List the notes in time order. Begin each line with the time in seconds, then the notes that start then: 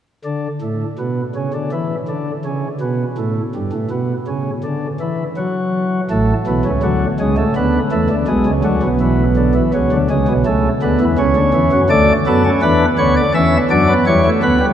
0.25 D3
0.61 A2
0.99 B2
1.35 C#3
1.54 D3
1.72 E3
2.08 D3
2.45 C#3
2.81 B2
3.18 A2
3.55 G2
3.73 A2
3.90 B2
4.27 C#3
4.64 D3
5.00 E3
5.37 F#3
6.11 A1 A2 A3
6.47 B1 B2 E3
6.65 C#2 C#3
6.83 D2 D3 F#3
7.20 C#2 C#3 G#3
7.37 A3
7.56 D2 D3 B3
7.92 E2 E3 A3
8.09 D2 D3
8.28 B1 B2 G#3
8.46 C#2 C#3
8.64 D2 D3 F#3
8.83 B1 B2
9.01 E3
9.36 D3
9.55 E3
9.74 C#2 C#3 F#3
9.92 D2 D3
10.10 C#2 C#3 G#3
10.28 B1 B2
10.46 C#2 C#3 A3
10.82 D2 D3 B3
11.01 E2 E3
11.18 C#2 C#3 C#4
11.36 D2 D3
11.54 E2 E3
11.72 F#2 F#3
11.89 D2 D3 A3 D5
12.27 F#2 F#3 B3 A4
12.45 C#4
12.62 E2 E3 D4 B4
12.98 D2 D3 B3 C#5
13.16 D5
13.35 E2 E3 C#4 E5
13.70 F#2 F#3 D4 D5
13.88 B3
14.07 E2 E3 G3 C#5
14.25 A3
14.43 D2 D3 B3 B4
14.60 G3